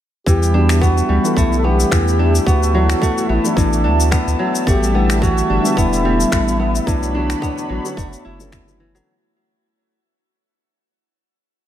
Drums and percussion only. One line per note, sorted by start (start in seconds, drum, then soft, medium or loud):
0.26 kick loud
0.26 cabasa medium
0.43 cabasa soft
0.69 finger snap medium
0.69 cabasa medium
0.82 kick medium
0.82 cabasa soft
0.98 cabasa soft
1.25 cabasa medium
1.37 kick medium
1.37 cabasa medium
1.53 cabasa soft
1.80 cabasa medium
1.92 finger snap medium
1.92 kick medium
1.92 cabasa soft
2.08 cabasa soft
2.35 cabasa medium
2.47 kick loud
2.47 cabasa medium
2.63 cabasa soft
2.90 finger snap medium
2.90 cabasa medium
3.02 kick medium
3.02 cabasa medium
3.18 cabasa soft
3.45 cabasa medium
3.57 kick loud
3.57 cabasa medium
3.73 cabasa soft
4.00 cabasa medium
4.12 finger snap medium
4.12 kick loud
4.12 cabasa medium
4.28 cabasa soft
4.55 cabasa medium
4.67 kick loud
4.67 cabasa medium
4.83 cabasa soft
5.10 finger snap medium
5.10 cabasa medium
5.22 kick loud
5.22 cabasa medium
5.38 cabasa soft
5.66 cabasa medium
5.77 kick loud
5.77 cabasa medium
5.93 cabasa soft
6.21 cabasa medium
6.32 finger snap medium
6.32 kick loud
6.32 cabasa medium
6.48 cabasa soft
6.75 cabasa medium
6.87 kick loud
6.87 cabasa medium
7.03 cabasa soft
7.30 finger snap medium
7.30 cabasa medium
7.42 kick loud
7.42 cabasa medium
7.58 cabasa soft
7.86 cabasa medium
7.97 kick loud
7.97 cabasa medium
8.13 cabasa soft
8.40 cabasa medium
8.52 finger snap medium
8.52 kick loud
8.52 cabasa medium
8.68 cabasa soft
8.96 cabasa medium